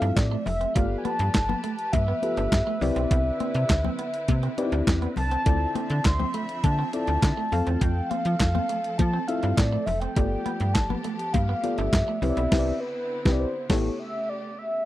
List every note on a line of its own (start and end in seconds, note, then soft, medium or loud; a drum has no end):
0.00 0.12 G2 medium
0.00 0.71 C3 medium
0.00 2.77 F3 medium
0.00 2.77 A3 medium
0.00 0.37 C4 medium
0.00 0.11 D4 medium
0.00 0.37 E4 medium
0.00 0.37 F4 medium
0.00 0.37 A4 medium
0.00 0.37 E5 medium
0.00 0.71 E5 medium
0.00 0.17 F5 medium
0.00 closed hi-hat soft
0.16 0.37 A2 medium
0.16 0.45 D5 medium
0.16 kick loud
0.16 snare loud
0.16 clap loud
0.16 closed hi-hat loud
0.16 muted conga soft
0.31 0.41 A3 medium
0.46 0.66 F1 loud
0.46 0.73 E5 loud
0.46 muted clean electric guitar stroke soft
0.46 open hi-hat medium
0.46 muted conga soft
0.46 low conga medium
0.61 0.70 C4 medium
0.61 closed hi-hat medium
0.75 0.96 G1 loud
0.75 0.85 A3 medium
0.75 1.41 B3 medium
0.75 1.42 F4 medium
0.75 1.42 G4 medium
0.75 2.80 G4 medium
0.75 1.42 A4 medium
0.75 5.43 B4 medium
0.75 1.42 D5 medium
0.75 0.96 F5 loud
0.75 kick loud
0.75 closed hi-hat loud
0.75 muted conga soft
0.98 1.06 G#5 medium
1.04 1.14 B3 medium
1.04 1.94 A5 loud
1.04 closed hi-hat medium
1.04 muted conga soft
1.04 high conga medium
1.19 1.30 G2 loud
1.19 muted clean electric guitar stroke soft
1.19 closed hi-hat medium
1.34 1.55 G1 medium
1.34 muted clean electric guitar stroke soft
1.34 kick loud
1.34 snare loud
1.34 clap medium
1.34 closed hi-hat medium
1.34 muted conga soft
1.49 1.59 B3 medium
1.49 high conga medium
1.49 low conga medium
1.64 1.73 A3 loud
1.64 closed hi-hat medium
1.64 muted conga soft
1.79 closed hi-hat medium
1.92 2.13 G2 loud
1.92 3.10 E5 loud
1.92 kick loud
1.92 closed hi-hat medium
1.92 high conga medium
2.08 2.18 B3 medium
2.22 2.72 B3 medium
2.22 2.72 F4 medium
2.22 2.72 G4 medium
2.22 2.72 A4 medium
2.22 2.72 B4 loud
2.22 muted clean electric guitar stroke soft
2.22 closed hi-hat medium
2.22 muted conga soft
2.37 2.47 G1 loud
2.37 2.47 D4 medium
2.37 closed hi-hat soft
2.52 2.62 G2 loud
2.52 kick loud
2.52 snare loud
2.52 clap loud
2.52 closed hi-hat loud
2.52 muted conga soft
2.67 2.76 A3 medium
2.81 2.91 C2 loud
2.81 7.48 D3 medium
2.81 3.75 C4 loud
2.81 10.13 C4 medium
2.81 3.76 E4 medium
2.81 5.44 E4 medium
2.81 3.76 G4 medium
2.81 3.76 B4 medium
2.81 3.76 D5 loud
2.81 muted clean electric guitar stroke soft
2.81 open hi-hat medium
2.81 low conga medium
2.96 3.06 B1 medium
2.96 3.06 C4 medium
2.96 closed hi-hat medium
3.11 3.31 C2 loud
3.11 3.21 B3 medium
3.11 4.83 E5 medium
3.11 kick loud
3.11 closed hi-hat loud
3.40 3.50 C4 medium
3.40 closed hi-hat medium
3.40 high conga medium
3.54 3.65 C3 loud
3.54 muted clean electric guitar stroke soft
3.54 closed hi-hat medium
3.69 3.90 D2 medium
3.69 muted clean electric guitar stroke soft
3.69 kick loud
3.69 snare loud
3.69 clap loud
3.69 closed hi-hat loud
3.84 3.94 C4 medium
3.84 high conga medium
3.84 low conga medium
3.99 4.09 B3 medium
3.99 closed hi-hat medium
3.99 muted conga soft
4.14 closed hi-hat medium
4.28 4.49 C3 loud
4.28 kick loud
4.28 closed hi-hat medium
4.28 muted conga soft
4.28 high conga medium
4.43 4.53 C4 medium
4.43 closed hi-hat soft
4.58 5.07 C4 medium
4.58 4.64 D#4 medium
4.58 5.08 G4 medium
4.58 5.08 B4 medium
4.58 5.08 D5 loud
4.58 muted clean electric guitar stroke soft
4.58 closed hi-hat medium
4.58 muted conga soft
4.64 5.11 E4 medium
4.72 4.82 D2 loud
4.72 4.82 D4 medium
4.72 closed hi-hat soft
4.87 5.07 E2 medium
4.87 kick loud
4.87 snare loud
4.87 clap loud
4.87 closed hi-hat loud
4.87 muted conga soft
5.02 5.12 B3 medium
5.02 closed hi-hat soft
5.02 high conga medium
5.16 5.37 C2 medium
5.16 5.72 A5 loud
5.16 muted clean electric guitar stroke soft
5.16 open hi-hat medium
5.16 low conga medium
5.31 5.41 C4 medium
5.31 closed hi-hat medium
5.46 5.66 D2 loud
5.46 7.50 F3 medium
5.46 5.56 A3 medium
5.46 6.12 C4 medium
5.46 6.12 E4 medium
5.46 6.12 F4 medium
5.46 6.12 A4 medium
5.46 6.12 D5 medium
5.46 7.50 E5 medium
5.46 kick loud
5.46 closed hi-hat loud
5.75 5.85 C4 medium
5.75 6.07 A5 loud
5.75 closed hi-hat medium
5.75 muted conga soft
5.75 high conga medium
5.90 6.00 D3 loud
5.90 muted clean electric guitar stroke soft
5.90 closed hi-hat medium
6.04 6.25 D2 medium
6.04 6.36 C6 loud
6.04 muted clean electric guitar stroke soft
6.04 kick loud
6.04 snare loud
6.04 clap medium
6.04 closed hi-hat loud
6.04 muted conga soft
6.20 6.29 C4 medium
6.20 high conga medium
6.20 low conga medium
6.34 6.44 A3 medium
6.34 6.65 B5 loud
6.34 closed hi-hat medium
6.34 muted conga soft
6.49 closed hi-hat medium
6.64 6.84 D3 loud
6.64 6.92 A5 loud
6.64 kick loud
6.64 closed hi-hat medium
6.64 high conga medium
6.79 6.88 C4 medium
6.93 7.43 C4 medium
6.93 7.43 E4 medium
6.93 7.43 F4 medium
6.93 7.43 A4 medium
6.93 7.43 D5 medium
6.93 7.82 A5 loud
6.93 muted clean electric guitar stroke soft
6.93 closed hi-hat medium
7.07 7.18 D2 loud
7.07 7.17 D4 medium
7.07 closed hi-hat medium
7.23 7.33 D3 loud
7.23 kick loud
7.23 snare loud
7.23 clap loud
7.23 closed hi-hat loud
7.23 muted conga soft
7.37 7.47 A3 medium
7.52 7.62 F2 loud
7.52 10.14 F3 medium
7.52 12.19 A3 medium
7.52 8.46 C4 medium
7.52 8.46 F4 medium
7.52 10.14 A4 medium
7.52 8.46 A4 medium
7.52 8.46 F5 loud
7.52 muted clean electric guitar stroke soft
7.52 open hi-hat medium
7.52 muted conga soft
7.52 low conga medium
7.67 7.77 E2 medium
7.67 7.76 C4 medium
7.67 closed hi-hat medium
7.81 8.01 F2 loud
7.81 7.91 A3 medium
7.81 8.11 G5 loud
7.81 kick loud
7.81 closed hi-hat loud
8.10 8.20 C4 medium
8.10 8.97 F5 loud
8.10 closed hi-hat medium
8.10 muted conga soft
8.10 high conga medium
8.25 8.36 F3 medium
8.25 muted clean electric guitar stroke soft
8.25 closed hi-hat medium
8.40 8.60 F2 loud
8.40 muted clean electric guitar stroke soft
8.40 kick loud
8.40 snare loud
8.40 clap loud
8.40 closed hi-hat medium
8.55 8.64 C4 medium
8.55 high conga medium
8.55 low conga medium
8.69 8.79 A3 medium
8.69 closed hi-hat medium
8.84 closed hi-hat medium
8.98 9.19 F3 loud
8.98 9.29 A5 loud
8.98 kick loud
8.98 closed hi-hat medium
8.98 muted conga soft
8.98 high conga medium
9.13 9.23 C4 medium
9.27 9.78 C4 medium
9.27 9.78 E4 medium
9.27 9.78 F4 medium
9.27 9.78 A4 medium
9.27 9.78 E5 medium
9.27 9.58 F5 loud
9.27 muted clean electric guitar stroke soft
9.27 closed hi-hat medium
9.43 9.53 G2 medium
9.43 9.53 D4 medium
9.43 closed hi-hat medium
9.57 9.78 A2 medium
9.57 9.87 D5 medium
9.57 kick loud
9.57 snare loud
9.57 clap loud
9.57 closed hi-hat loud
9.57 muted conga soft
9.72 9.82 A3 medium
9.86 10.07 F1 medium
9.86 10.00 E5 medium
9.86 muted clean electric guitar stroke soft
9.86 open hi-hat medium
9.86 low conga medium
10.00 10.11 C4 medium
10.00 10.75 G5 loud
10.00 closed hi-hat medium
10.16 10.37 G1 loud
10.16 12.20 F3 medium
10.16 10.26 A3 medium
10.16 10.83 B3 medium
10.16 14.83 B3 medium
10.16 10.83 F4 medium
10.16 12.20 G4 medium
10.16 10.83 G4 medium
10.16 10.83 A4 medium
10.16 10.83 D5 medium
10.16 kick loud
10.16 closed hi-hat medium
10.16 muted conga soft
10.46 10.55 B3 medium
10.46 closed hi-hat medium
10.46 muted conga soft
10.46 high conga medium
10.60 10.77 G2 medium
10.60 muted clean electric guitar stroke medium
10.60 closed hi-hat medium
10.74 10.95 G1 medium
10.74 11.35 A5 loud
10.74 muted clean electric guitar stroke soft
10.74 kick loud
10.74 snare loud
10.74 clap medium
10.74 closed hi-hat loud
10.74 muted conga soft
10.90 11.00 B3 medium
10.90 high conga medium
10.90 low conga medium
11.04 11.14 A3 medium
11.04 closed hi-hat medium
11.04 muted conga soft
11.19 closed hi-hat medium
11.33 11.54 G2 loud
11.33 11.79 F5 loud
11.33 kick loud
11.33 closed hi-hat medium
11.33 high conga medium
11.49 11.59 B3 medium
11.63 12.13 B3 medium
11.63 12.13 F4 medium
11.63 12.13 G4 medium
11.63 12.13 A4 medium
11.63 12.13 D5 medium
11.63 muted clean electric guitar stroke soft
11.63 closed hi-hat medium
11.63 muted conga soft
11.77 11.88 G1 loud
11.77 11.88 D4 medium
11.77 12.21 E5 loud
11.77 closed hi-hat soft
11.93 12.03 G2 loud
11.93 kick loud
11.93 snare loud
11.93 clap loud
11.93 closed hi-hat loud
11.93 muted conga soft
12.08 12.17 A3 medium
12.22 12.32 C2 loud
12.22 13.68 D3 medium
12.22 13.68 C4 medium
12.22 12.50 C4 medium
12.22 13.68 E4 medium
12.22 12.50 E4 medium
12.22 12.51 G4 medium
12.22 12.51 B4 medium
12.22 12.29 C#5 medium
12.22 12.82 E5 medium
12.22 muted clean electric guitar stroke soft
12.22 open hi-hat medium
12.22 muted conga soft
12.22 low conga medium
12.30 12.55 D5 medium
12.37 12.47 B1 loud
12.37 12.47 B3 medium
12.37 closed hi-hat medium
12.51 12.72 C2 loud
12.51 12.72 C4 loud
12.51 12.72 E4 loud
12.51 12.72 G4 loud
12.51 12.72 B4 loud
12.51 kick loud
12.51 snare loud
12.51 crash medium
12.59 12.76 D5 loud
12.80 13.41 B4 loud
13.25 13.46 C2 loud
13.25 13.45 C4 medium
13.25 13.45 E4 medium
13.25 13.46 G4 loud
13.25 13.46 B4 loud
13.25 kick loud
13.25 snare loud
13.32 13.49 D5 loud
13.40 13.71 C5 medium
13.69 13.90 A1 loud
13.69 14.85 C#3 medium
13.69 14.85 A3 medium
13.69 13.90 B3 loud
13.69 13.90 E4 loud
13.69 14.85 G4 medium
13.69 13.90 G4 loud
13.69 13.90 A4 loud
13.69 13.99 C#5 medium
13.69 13.90 C#5 loud
13.69 kick loud
13.69 snare loud
13.69 crash medium
13.99 14.31 E5 medium
14.29 14.60 D5 loud
14.58 14.85 E5 loud